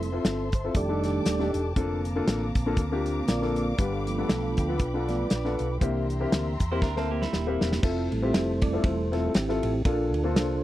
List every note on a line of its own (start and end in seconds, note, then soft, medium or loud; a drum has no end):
0.00 0.17 F1 medium
0.00 0.10 G3 soft
0.00 0.10 A3 soft
0.00 0.50 C4 medium
0.00 0.11 E4 medium
0.00 0.25 A4 medium
0.00 0.75 C5 medium
0.00 0.73 E5 medium
0.00 3.75 A5 medium
0.00 0.72 C6 medium
0.00 closed hi-hat medium
0.13 0.41 C4 medium
0.13 0.41 E4 medium
0.13 0.42 F4 medium
0.13 0.42 A4 medium
0.25 0.68 G1 medium
0.25 0.55 A4 medium
0.25 snare loud
0.25 closed hi-hat medium
0.52 0.75 C5 medium
0.52 kick medium
0.52 closed hi-hat medium
0.64 0.75 C4 medium
0.64 0.75 E4 medium
0.64 0.75 F4 medium
0.64 0.76 A4 medium
0.75 1.18 F1 loud
0.75 1.50 D#3 soft
0.75 1.51 G3 soft
0.75 1.51 A3 soft
0.75 1.51 D4 medium
0.75 1.04 G4 medium
0.75 1.04 A4 medium
0.75 1.76 D5 medium
0.75 1.04 D5 medium
0.75 1.75 G5 medium
0.75 1.75 D6 medium
0.75 kick loud
0.75 closed hi-hat medium
0.89 1.17 D4 medium
0.89 1.17 D#4 medium
0.89 1.17 G4 medium
0.89 1.17 A4 medium
1.04 1.73 G4 medium
1.04 1.73 A4 medium
1.04 1.51 D5 loud
1.04 snare soft
1.04 closed hi-hat medium
1.26 1.50 D#1 medium
1.26 snare loud
1.26 closed hi-hat medium
1.39 1.61 D4 medium
1.39 1.61 D#4 medium
1.39 1.61 G4 medium
1.39 1.62 A4 medium
1.39 snare soft
1.54 1.73 E1 medium
1.54 closed hi-hat medium
1.76 2.20 F1 medium
1.76 3.75 D3 medium
1.76 2.00 A#3 medium
1.76 3.75 A#3 soft
1.76 3.75 C4 medium
1.76 2.00 D4 medium
1.76 2.00 F4 medium
1.76 2.00 A4 medium
1.76 5.77 F5 medium
1.76 3.77 A#5 medium
1.76 5.77 D6 medium
1.76 kick loud
1.76 closed hi-hat medium
2.05 closed hi-hat medium
2.15 2.44 A#3 medium
2.15 2.44 D4 medium
2.15 2.44 F4 medium
2.15 2.44 A4 medium
2.27 2.51 A1 medium
2.27 snare loud
2.27 closed hi-hat medium
2.55 2.74 A#1 medium
2.55 kick medium
2.55 closed hi-hat medium
2.66 2.79 A#3 medium
2.66 2.79 D4 medium
2.66 2.79 F4 medium
2.66 2.79 A4 medium
2.77 3.20 D2 medium
2.77 kick loud
2.77 closed hi-hat medium
2.92 3.19 A#3 medium
2.92 3.19 D4 medium
2.92 3.19 F4 medium
2.92 3.20 G4 medium
3.06 closed hi-hat medium
3.28 3.71 A#1 medium
3.28 3.76 F4 medium
3.28 3.76 A#4 medium
3.28 3.80 D5 loud
3.28 snare loud
3.28 closed hi-hat medium
3.42 3.64 A#3 medium
3.42 3.64 D4 medium
3.42 3.64 F4 medium
3.42 3.64 A4 medium
3.42 snare soft
3.56 closed hi-hat medium
3.78 4.22 G1 loud
3.78 4.54 G2 medium
3.78 4.02 B3 medium
3.78 4.02 D4 medium
3.78 4.30 D4 medium
3.78 4.29 F4 medium
3.78 4.02 F4 medium
3.78 4.03 G4 medium
3.78 3.93 B4 medium
3.78 5.79 G5 medium
3.78 5.79 B5 medium
3.78 kick loud
3.78 closed hi-hat medium
3.93 4.19 A4 medium
4.07 4.76 F3 soft
4.07 4.76 A3 soft
4.07 4.77 B3 medium
4.07 closed hi-hat medium
4.17 4.46 B3 medium
4.17 4.46 D4 medium
4.17 4.46 F4 medium
4.17 4.29 G4 medium
4.17 4.47 A4 medium
4.29 4.54 B1 medium
4.29 4.79 D4 medium
4.29 4.79 F4 medium
4.29 4.81 A4 medium
4.29 snare loud
4.29 closed hi-hat medium
4.57 4.77 D2 medium
4.57 kick medium
4.57 closed hi-hat medium
4.68 4.81 B3 medium
4.68 4.81 D4 medium
4.68 4.82 F4 medium
4.68 4.82 A4 medium
4.78 5.23 B1 medium
4.78 5.77 D4 medium
4.78 5.08 F4 medium
4.78 5.08 B4 medium
4.78 kick loud
4.78 closed hi-hat medium
4.94 5.21 B3 medium
4.94 5.22 D4 medium
4.94 5.22 F4 medium
4.94 5.22 A4 medium
5.08 5.28 F3 soft
5.08 5.29 A3 soft
5.08 5.29 B3 soft
5.08 5.78 F4 medium
5.08 5.78 B4 medium
5.08 5.55 D5 medium
5.08 snare soft
5.08 closed hi-hat medium
5.30 5.55 A#1 medium
5.30 snare loud
5.30 closed hi-hat medium
5.45 5.66 B3 medium
5.45 5.66 D4 medium
5.45 5.66 F4 medium
5.45 5.67 A4 medium
5.45 snare soft
5.59 5.78 B1 medium
5.59 closed hi-hat medium
5.80 6.24 C2 loud
5.80 6.56 C3 medium
5.80 6.55 E3 soft
5.80 6.56 A#3 soft
5.80 6.04 A#3 medium
5.80 6.05 C4 medium
5.80 6.56 D4 medium
5.80 6.05 E4 medium
5.80 6.05 G4 medium
5.80 7.82 E5 medium
5.80 7.82 G5 medium
5.80 7.82 A#5 medium
5.80 7.82 C6 medium
5.80 kick loud
5.80 closed hi-hat medium
6.10 closed hi-hat medium
6.20 6.48 A#3 medium
6.20 6.49 C4 medium
6.20 6.49 E4 medium
6.20 6.49 G4 medium
6.32 6.56 D2 medium
6.32 snare loud
6.32 closed hi-hat medium
6.60 6.82 E2 medium
6.60 kick medium
6.60 closed hi-hat medium
6.71 6.84 A#3 medium
6.71 6.84 C4 medium
6.71 6.84 E4 medium
6.71 6.82 E4 medium
6.71 6.84 G4 medium
6.71 6.82 C5 medium
6.82 7.25 D2 medium
6.82 6.96 D4 medium
6.82 6.96 A#4 medium
6.82 kick loud
6.82 snare medium
6.96 7.24 A#3 medium
6.96 7.24 C4 medium
6.96 7.11 C4 medium
6.96 7.24 E4 medium
6.96 7.10 A4 medium
6.96 7.24 A#4 medium
6.96 snare soft
7.11 7.21 A#3 medium
7.11 7.21 G4 medium
7.22 7.81 G3 medium
7.22 7.80 E4 medium
7.22 snare medium
7.33 7.57 D#1 medium
7.33 7.80 A#3 soft
7.33 7.80 E4 medium
7.33 7.85 G4 medium
7.33 snare medium
7.47 7.68 A#3 medium
7.47 7.68 C4 medium
7.47 7.69 E4 medium
7.47 7.69 G4 medium
7.61 7.80 E1 medium
7.61 snare medium
7.72 snare medium
7.83 8.08 F1 medium
7.83 8.06 C4 medium
7.83 8.81 C4 medium
7.83 8.06 E4 medium
7.83 8.12 E4 medium
7.83 8.07 F4 medium
7.83 8.07 A4 medium
7.83 8.23 A4 medium
7.83 kick loud
7.83 crash medium
8.11 8.31 A1 medium
8.11 9.13 G3 medium
8.11 9.13 A3 soft
8.11 8.23 E4 medium
8.11 ride medium
8.22 8.51 C4 medium
8.22 8.51 E4 medium
8.22 8.84 E4 medium
8.22 8.51 F4 medium
8.22 8.51 G4 medium
8.22 8.84 A4 medium
8.22 8.63 C5 medium
8.34 snare loud
8.34 ride medium
8.62 8.85 D5 medium
8.62 kick loud
8.62 ride medium
8.73 8.93 C4 medium
8.73 8.93 E4 medium
8.73 8.94 F4 medium
8.73 8.94 A4 medium
8.84 9.27 E1 loud
8.84 9.13 E4 medium
8.84 9.28 A4 medium
8.84 9.26 C5 medium
8.84 kick loud
8.84 ride medium
9.12 9.33 G3 soft
9.12 9.33 A3 soft
9.12 9.30 C4 medium
9.12 9.31 E4 medium
9.12 9.34 E4 medium
9.12 9.31 F4 medium
9.12 9.31 A4 medium
9.12 snare soft
9.12 ride medium
9.29 9.35 A4 medium
9.34 9.59 G#1 medium
9.34 9.82 C4 medium
9.34 9.82 E4 medium
9.34 9.82 G4 medium
9.34 snare loud
9.34 ride medium
9.49 9.70 C4 medium
9.49 9.70 E4 medium
9.49 9.70 F4 medium
9.49 9.71 A4 medium
9.49 snare soft
9.63 9.82 A1 medium
9.63 ride medium
9.85 10.14 A#1 medium
9.85 10.60 A#2 medium
9.85 10.08 A#3 medium
9.85 10.09 D4 medium
9.85 10.64 D4 medium
9.85 10.23 F4 medium
9.85 10.09 F4 medium
9.85 10.23 A4 medium
9.85 10.09 A4 medium
9.85 kick loud
9.85 ride medium
10.14 10.36 D2 medium
10.14 ride medium
10.24 10.52 A#3 medium
10.24 10.53 D4 medium
10.24 10.64 F4 medium
10.24 10.53 F4 medium
10.24 10.64 A4 medium
10.24 10.53 A4 medium
10.24 10.64 C5 loud
10.36 10.64 C2 medium
10.36 snare loud
10.36 ride medium